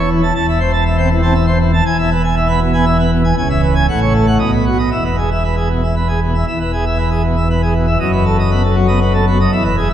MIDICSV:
0, 0, Header, 1, 2, 480
1, 0, Start_track
1, 0, Key_signature, 4, "major"
1, 0, Tempo, 501672
1, 340, Time_signature, 3, 2, 24, 8
1, 3220, Tempo, 517241
1, 6580, Tempo, 505476
1, 9379, End_track
2, 0, Start_track
2, 0, Title_t, "Pipe organ"
2, 0, Program_c, 0, 19
2, 0, Note_on_c, 0, 28, 82
2, 0, Note_on_c, 0, 40, 79
2, 93, Note_on_c, 0, 52, 73
2, 203, Note_off_c, 0, 52, 0
2, 220, Note_on_c, 0, 81, 74
2, 299, Note_off_c, 0, 28, 0
2, 301, Note_off_c, 0, 40, 0
2, 318, Note_off_c, 0, 81, 0
2, 333, Note_on_c, 0, 40, 89
2, 334, Note_on_c, 0, 28, 89
2, 337, Note_on_c, 0, 81, 93
2, 445, Note_off_c, 0, 81, 0
2, 458, Note_on_c, 0, 76, 76
2, 565, Note_off_c, 0, 76, 0
2, 574, Note_on_c, 0, 72, 74
2, 682, Note_off_c, 0, 72, 0
2, 698, Note_on_c, 0, 81, 74
2, 804, Note_off_c, 0, 81, 0
2, 819, Note_on_c, 0, 76, 79
2, 924, Note_off_c, 0, 76, 0
2, 932, Note_on_c, 0, 72, 78
2, 936, Note_on_c, 0, 60, 69
2, 1039, Note_off_c, 0, 72, 0
2, 1042, Note_off_c, 0, 60, 0
2, 1052, Note_on_c, 0, 52, 71
2, 1159, Note_off_c, 0, 52, 0
2, 1168, Note_on_c, 0, 81, 83
2, 1171, Note_on_c, 0, 60, 72
2, 1277, Note_off_c, 0, 81, 0
2, 1278, Note_off_c, 0, 60, 0
2, 1286, Note_on_c, 0, 76, 84
2, 1396, Note_off_c, 0, 76, 0
2, 1402, Note_on_c, 0, 72, 74
2, 1514, Note_off_c, 0, 72, 0
2, 1530, Note_on_c, 0, 52, 70
2, 1639, Note_off_c, 0, 52, 0
2, 1659, Note_on_c, 0, 81, 77
2, 1732, Note_off_c, 0, 28, 0
2, 1732, Note_off_c, 0, 40, 0
2, 1759, Note_off_c, 0, 81, 0
2, 1775, Note_on_c, 0, 40, 90
2, 1778, Note_on_c, 0, 80, 98
2, 1779, Note_on_c, 0, 28, 98
2, 1884, Note_off_c, 0, 80, 0
2, 1899, Note_on_c, 0, 76, 82
2, 2005, Note_off_c, 0, 76, 0
2, 2017, Note_on_c, 0, 71, 83
2, 2124, Note_off_c, 0, 71, 0
2, 2140, Note_on_c, 0, 80, 83
2, 2246, Note_off_c, 0, 80, 0
2, 2263, Note_on_c, 0, 76, 83
2, 2368, Note_off_c, 0, 76, 0
2, 2373, Note_on_c, 0, 59, 79
2, 2376, Note_on_c, 0, 71, 90
2, 2482, Note_off_c, 0, 59, 0
2, 2484, Note_off_c, 0, 71, 0
2, 2497, Note_on_c, 0, 47, 80
2, 2605, Note_off_c, 0, 47, 0
2, 2614, Note_on_c, 0, 80, 82
2, 2620, Note_on_c, 0, 59, 77
2, 2724, Note_off_c, 0, 80, 0
2, 2727, Note_off_c, 0, 59, 0
2, 2735, Note_on_c, 0, 76, 83
2, 2844, Note_off_c, 0, 76, 0
2, 2864, Note_on_c, 0, 71, 82
2, 2970, Note_off_c, 0, 71, 0
2, 2980, Note_on_c, 0, 47, 78
2, 3087, Note_off_c, 0, 47, 0
2, 3103, Note_on_c, 0, 80, 78
2, 3183, Note_off_c, 0, 40, 0
2, 3185, Note_off_c, 0, 28, 0
2, 3204, Note_off_c, 0, 80, 0
2, 3225, Note_on_c, 0, 80, 117
2, 3226, Note_on_c, 0, 25, 88
2, 3230, Note_on_c, 0, 37, 81
2, 3328, Note_off_c, 0, 80, 0
2, 3344, Note_on_c, 0, 76, 86
2, 3447, Note_off_c, 0, 76, 0
2, 3460, Note_on_c, 0, 71, 76
2, 3565, Note_off_c, 0, 71, 0
2, 3578, Note_on_c, 0, 80, 68
2, 3678, Note_off_c, 0, 80, 0
2, 3683, Note_off_c, 0, 25, 0
2, 3685, Note_off_c, 0, 37, 0
2, 3701, Note_on_c, 0, 33, 87
2, 3702, Note_on_c, 0, 45, 88
2, 3703, Note_on_c, 0, 78, 100
2, 3806, Note_off_c, 0, 78, 0
2, 3826, Note_on_c, 0, 73, 80
2, 3928, Note_off_c, 0, 73, 0
2, 3941, Note_on_c, 0, 69, 68
2, 4046, Note_off_c, 0, 69, 0
2, 4058, Note_on_c, 0, 78, 74
2, 4160, Note_off_c, 0, 78, 0
2, 4165, Note_off_c, 0, 33, 0
2, 4165, Note_off_c, 0, 45, 0
2, 4170, Note_on_c, 0, 75, 97
2, 4171, Note_on_c, 0, 35, 81
2, 4172, Note_on_c, 0, 47, 75
2, 4281, Note_off_c, 0, 75, 0
2, 4297, Note_on_c, 0, 71, 66
2, 4405, Note_off_c, 0, 71, 0
2, 4422, Note_on_c, 0, 66, 56
2, 4528, Note_off_c, 0, 66, 0
2, 4535, Note_on_c, 0, 75, 55
2, 4640, Note_off_c, 0, 75, 0
2, 4643, Note_off_c, 0, 35, 0
2, 4643, Note_off_c, 0, 47, 0
2, 4658, Note_on_c, 0, 76, 88
2, 4662, Note_on_c, 0, 28, 73
2, 4662, Note_on_c, 0, 40, 73
2, 4767, Note_off_c, 0, 76, 0
2, 4774, Note_on_c, 0, 71, 65
2, 4885, Note_off_c, 0, 71, 0
2, 4897, Note_on_c, 0, 68, 62
2, 5007, Note_off_c, 0, 68, 0
2, 5032, Note_on_c, 0, 76, 60
2, 5136, Note_off_c, 0, 76, 0
2, 5141, Note_on_c, 0, 71, 64
2, 5249, Note_off_c, 0, 71, 0
2, 5262, Note_on_c, 0, 68, 58
2, 5370, Note_off_c, 0, 68, 0
2, 5383, Note_on_c, 0, 47, 56
2, 5490, Note_off_c, 0, 47, 0
2, 5513, Note_on_c, 0, 76, 64
2, 5617, Note_off_c, 0, 76, 0
2, 5628, Note_on_c, 0, 71, 58
2, 5734, Note_off_c, 0, 71, 0
2, 5740, Note_on_c, 0, 68, 57
2, 5850, Note_off_c, 0, 68, 0
2, 5868, Note_on_c, 0, 47, 58
2, 5974, Note_off_c, 0, 47, 0
2, 5988, Note_on_c, 0, 76, 51
2, 6069, Note_off_c, 0, 28, 0
2, 6069, Note_off_c, 0, 40, 0
2, 6085, Note_off_c, 0, 76, 0
2, 6100, Note_on_c, 0, 40, 74
2, 6103, Note_on_c, 0, 28, 66
2, 6104, Note_on_c, 0, 76, 88
2, 6210, Note_off_c, 0, 76, 0
2, 6222, Note_on_c, 0, 71, 71
2, 6329, Note_off_c, 0, 71, 0
2, 6342, Note_on_c, 0, 68, 60
2, 6448, Note_off_c, 0, 68, 0
2, 6463, Note_on_c, 0, 76, 61
2, 6568, Note_off_c, 0, 76, 0
2, 6573, Note_on_c, 0, 71, 72
2, 6684, Note_off_c, 0, 71, 0
2, 6693, Note_on_c, 0, 68, 66
2, 6805, Note_off_c, 0, 68, 0
2, 6816, Note_on_c, 0, 47, 56
2, 6927, Note_off_c, 0, 47, 0
2, 6940, Note_on_c, 0, 76, 69
2, 7049, Note_off_c, 0, 76, 0
2, 7067, Note_on_c, 0, 71, 60
2, 7173, Note_off_c, 0, 71, 0
2, 7185, Note_on_c, 0, 68, 70
2, 7293, Note_off_c, 0, 68, 0
2, 7302, Note_on_c, 0, 47, 58
2, 7411, Note_off_c, 0, 47, 0
2, 7419, Note_on_c, 0, 76, 67
2, 7506, Note_off_c, 0, 40, 0
2, 7508, Note_off_c, 0, 28, 0
2, 7524, Note_off_c, 0, 76, 0
2, 7536, Note_on_c, 0, 30, 84
2, 7538, Note_on_c, 0, 42, 86
2, 7540, Note_on_c, 0, 75, 90
2, 7650, Note_off_c, 0, 75, 0
2, 7662, Note_on_c, 0, 71, 82
2, 7771, Note_off_c, 0, 71, 0
2, 7784, Note_on_c, 0, 69, 63
2, 7892, Note_off_c, 0, 69, 0
2, 7914, Note_on_c, 0, 75, 67
2, 8017, Note_off_c, 0, 75, 0
2, 8024, Note_on_c, 0, 71, 68
2, 8025, Note_on_c, 0, 59, 67
2, 8132, Note_off_c, 0, 59, 0
2, 8132, Note_off_c, 0, 71, 0
2, 8144, Note_on_c, 0, 69, 75
2, 8251, Note_off_c, 0, 69, 0
2, 8260, Note_on_c, 0, 54, 67
2, 8369, Note_off_c, 0, 54, 0
2, 8375, Note_on_c, 0, 75, 76
2, 8378, Note_on_c, 0, 59, 64
2, 8486, Note_off_c, 0, 75, 0
2, 8488, Note_off_c, 0, 59, 0
2, 8507, Note_on_c, 0, 71, 76
2, 8613, Note_off_c, 0, 71, 0
2, 8623, Note_on_c, 0, 69, 75
2, 8730, Note_off_c, 0, 69, 0
2, 8747, Note_on_c, 0, 59, 70
2, 8749, Note_on_c, 0, 54, 70
2, 8852, Note_off_c, 0, 59, 0
2, 8853, Note_off_c, 0, 54, 0
2, 8876, Note_on_c, 0, 75, 74
2, 8938, Note_off_c, 0, 30, 0
2, 8940, Note_off_c, 0, 42, 0
2, 8972, Note_off_c, 0, 75, 0
2, 8988, Note_on_c, 0, 28, 86
2, 8989, Note_on_c, 0, 76, 110
2, 8992, Note_on_c, 0, 40, 95
2, 9093, Note_off_c, 0, 76, 0
2, 9101, Note_on_c, 0, 71, 80
2, 9208, Note_off_c, 0, 71, 0
2, 9226, Note_on_c, 0, 68, 74
2, 9330, Note_off_c, 0, 68, 0
2, 9343, Note_on_c, 0, 76, 79
2, 9379, Note_off_c, 0, 28, 0
2, 9379, Note_off_c, 0, 40, 0
2, 9379, Note_off_c, 0, 76, 0
2, 9379, End_track
0, 0, End_of_file